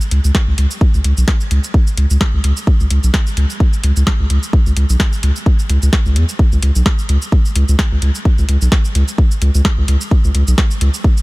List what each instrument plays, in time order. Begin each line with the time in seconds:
0.01 shaker
0.11 sub bass C#2, closed hi-hat
0.24 sub bass C#2, shaker
0.35 kick, snare
0.48 sub bass C#2
0.58 sub bass C#2, closed hi-hat
0.71 shaker
0.81 kick
0.94 sub bass C#2, shaker
1.04 sub bass C#2, closed hi-hat
1.17 sub bass B1, shaker
1.28 kick, snare
1.41 shaker
1.51 sub bass C#2, closed hi-hat
1.64 shaker
1.74 kick
1.87 shaker
1.97 sub bass C#2, closed hi-hat
2.10 sub bass C#2, shaker
2.21 kick, snare
2.34 sub bass C#2
2.44 sub bass C#2, closed hi-hat
2.57 shaker
2.67 kick
2.80 sub bass C#2, shaker
2.90 sub bass C#2, closed hi-hat
3.03 sub bass B1, shaker
3.14 kick, snare
3.27 shaker
3.37 sub bass C#2, closed hi-hat
3.50 shaker
3.60 kick
3.73 shaker
3.84 sub bass C#2, closed hi-hat
3.96 sub bass C#2, shaker
4.07 kick, snare
4.20 sub bass C#2
4.30 sub bass C#2, closed hi-hat
4.43 shaker
4.53 kick
4.66 sub bass C#2, shaker
4.77 sub bass C#2, closed hi-hat
4.89 sub bass B1, shaker
5.00 kick, snare
5.13 shaker
5.23 sub bass C#2, closed hi-hat
5.36 shaker
5.46 kick
5.59 shaker
5.70 sub bass C#2, closed hi-hat
5.82 sub bass C#2, shaker
5.93 kick, snare
6.06 sub bass C#2, shaker
6.16 sub bass E2, closed hi-hat
6.29 shaker
6.39 kick
6.52 sub bass C#2, shaker
6.62 sub bass C#2, closed hi-hat
6.75 sub bass B1, shaker
6.86 kick, snare
6.99 shaker
7.09 sub bass C#2, closed hi-hat
7.22 shaker
7.32 kick
7.45 shaker
7.56 sub bass C#2, closed hi-hat
7.68 sub bass C#2, shaker
7.79 kick, snare
7.92 sub bass C#2
8.02 sub bass C#2, closed hi-hat
8.15 shaker
8.25 kick
8.38 sub bass C#2, shaker
8.49 sub bass C#2, closed hi-hat
8.62 sub bass B1, shaker
8.72 kick, snare
8.85 shaker
8.95 sub bass C#2, closed hi-hat
9.08 shaker
9.18 kick
9.31 shaker
9.42 sub bass C#2, closed hi-hat
9.55 sub bass C#2, shaker
9.65 kick, snare
9.78 sub bass C#2
9.88 sub bass C#2, closed hi-hat
10.01 shaker
10.11 kick
10.24 sub bass C#2, shaker
10.35 sub bass C#2, closed hi-hat
10.48 sub bass B1, shaker
10.58 kick, snare
10.71 shaker
10.81 sub bass C#2, closed hi-hat
10.94 shaker
11.04 kick
11.17 shaker